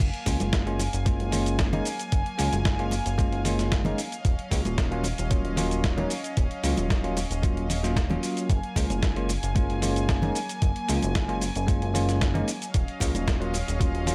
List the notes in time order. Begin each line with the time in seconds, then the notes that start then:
0.00 F#1 F#3 A#3 F5 G#5, kick, closed hi-hat, crash, shaker
0.14 closed hi-hat
0.26 C#2 G#3 A#3 C#4 F4, kick, open hi-hat, muted conga, shaker
0.40 F#1, closed hi-hat, high conga, shaker
0.53 kick, snare, closed hi-hat, shaker
0.66 G#3 A#3 C#4 F4, closed hi-hat
0.79 open hi-hat, muted conga, shaker
0.93 F#1, closed hi-hat, shaker
1.05 G#3 A#3 C#4 F4, kick, closed hi-hat, high conga, shaker
1.20 F#1, closed hi-hat
1.32 G#3 A#3 C#4 F4, open hi-hat, low conga, shaker
1.46 closed hi-hat, shaker
1.59 kick, snare, closed hi-hat, shaker
1.72 G#3 A#3 C#4 D#4, closed hi-hat, high conga, low conga
1.85 open hi-hat, shaker
1.99 closed hi-hat, shaker
2.12 F#1, kick, closed hi-hat, shaker
2.26 closed hi-hat
2.38 C#2 G#3 A#3 C#4 F4, open hi-hat, shaker
2.53 F#1, closed hi-hat, high conga, shaker
2.65 kick, snare, closed hi-hat, shaker
2.79 G#3 A#3 C#4 F4, closed hi-hat
2.91 open hi-hat, muted conga, shaker
3.06 F#1, closed hi-hat, shaker
3.18 G#3 A#3 C#4 F4, kick, closed hi-hat, high conga, shaker
3.33 F#1, closed hi-hat
3.44 G#3 A#3 C#4 F4, open hi-hat, low conga, shaker
3.59 snare, closed hi-hat, shaker
3.72 kick, snare, closed hi-hat, shaker
3.85 G#3 A#3 C#4 D#4, closed hi-hat, high conga, low conga
3.98 open hi-hat, shaker
4.12 closed hi-hat, shaker
4.25 D#1 F#3 C#4 D#5, kick, closed hi-hat, shaker
4.39 closed hi-hat
4.51 C#2 F#3 A#3 C#4 F4, kick, open hi-hat, muted conga, shaker
4.65 D#1, closed hi-hat, high conga, shaker
4.78 kick, snare, closed hi-hat, shaker
4.91 F#3 A#3 C#4 F4, closed hi-hat
5.04 open hi-hat, muted conga, shaker
5.18 D#1, closed hi-hat, shaker
5.30 F#3 A#3 C#4 F4, kick, closed hi-hat, high conga, shaker
5.45 D#1, closed hi-hat
5.57 F#3 A#3 C#4 F4, open hi-hat, low conga, shaker
5.71 closed hi-hat, shaker
5.84 kick, snare, closed hi-hat, shaker
5.97 F#3 A#3 C#4 D#4, closed hi-hat, high conga, low conga
6.10 open hi-hat, shaker
6.24 closed hi-hat, shaker
6.37 D#1, kick, closed hi-hat, shaker
6.51 closed hi-hat
6.63 C#2 F#3 A#3 C#4 F4, open hi-hat, shaker
6.77 D#1, closed hi-hat, high conga, shaker
6.90 kick, snare, closed hi-hat, shaker
7.03 F#3 A#3 C#4 F4, closed hi-hat
7.17 open hi-hat, muted conga, shaker
7.30 D#1, closed hi-hat, shaker
7.42 F#3 A#3 C#4 F4, kick, closed hi-hat, high conga, shaker
7.57 D#1, closed hi-hat
7.70 open hi-hat, low conga, shaker
7.83 F#3 A#3 C#4 F4, snare, closed hi-hat, shaker
7.96 kick, snare, closed hi-hat, shaker
8.10 F#3 A#3 C#4 F4, closed hi-hat, high conga, low conga
8.23 open hi-hat, shaker
8.37 closed hi-hat, shaker
8.49 F#1 A#3 G#5, kick, closed hi-hat, shaker
8.64 closed hi-hat
8.76 C#2 G#3 A#3 C#4 F4, kick, open hi-hat, muted conga, shaker
8.90 F#1, closed hi-hat, high conga, shaker
9.03 kick, snare, closed hi-hat, shaker
9.16 G#3 A#3 C#4 F4, closed hi-hat
9.29 open hi-hat, muted conga, shaker
9.43 F#1, closed hi-hat, shaker
9.55 G#3 A#3 C#4 F4, kick, closed hi-hat, high conga, shaker
9.70 F#1, closed hi-hat
9.82 G#3 A#3 C#4 F4, open hi-hat, low conga, shaker
9.96 closed hi-hat, shaker
10.09 kick, snare, closed hi-hat, shaker
10.22 G#3 A#3 C#4 D#4, closed hi-hat, high conga, low conga
10.35 open hi-hat, shaker
10.49 closed hi-hat, shaker
10.62 F#1, kick, closed hi-hat, shaker
10.76 closed hi-hat
10.88 C#2 G#3 A#3 C#4 F4, open hi-hat, shaker
11.02 F#1, closed hi-hat, high conga, shaker
11.15 kick, snare, closed hi-hat, shaker
11.28 G#3 A#3 C#4 F4, closed hi-hat
11.41 open hi-hat, muted conga, shaker
11.55 F#1, closed hi-hat, shaker
11.67 G#3 A#3 C#4 F4, kick, closed hi-hat, high conga, shaker
11.82 F#1, closed hi-hat
11.94 G#3 A#3 C#4 F4, open hi-hat, low conga, shaker
12.09 snare, closed hi-hat, shaker
12.21 kick, snare, closed hi-hat, shaker
12.34 G#3 A#3 C#4 D#4, closed hi-hat, high conga, low conga
12.48 open hi-hat, shaker
12.62 closed hi-hat, shaker
12.74 D#1 C#4 D#5 F5, kick, closed hi-hat, shaker
12.88 closed hi-hat
13.00 C#2 F#3 A#3 C#4 F4, kick, open hi-hat, muted conga, shaker
13.14 D#1, closed hi-hat, high conga, shaker
13.28 kick, snare, closed hi-hat, shaker
13.40 F#3 A#3 C#4 F4, closed hi-hat
13.54 open hi-hat, muted conga, shaker
13.68 D#1, closed hi-hat, shaker
13.79 F#3 A#3 C#4 F4, kick, closed hi-hat, high conga, shaker
13.95 D#1, closed hi-hat
14.06 F#3 A#3 C#4 F4, open hi-hat, low conga, shaker